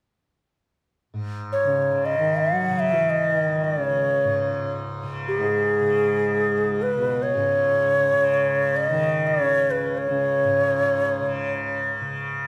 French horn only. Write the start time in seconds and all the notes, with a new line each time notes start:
1.66 C#3
2.19 D#3
2.53 F#3
2.93 E3
3.25 E3
3.37 D#3
3.78 C#3
5.40 G#2
6.97 B2
7.35 C#3
8.90 D#3
9.40 C#3
10.11 C#3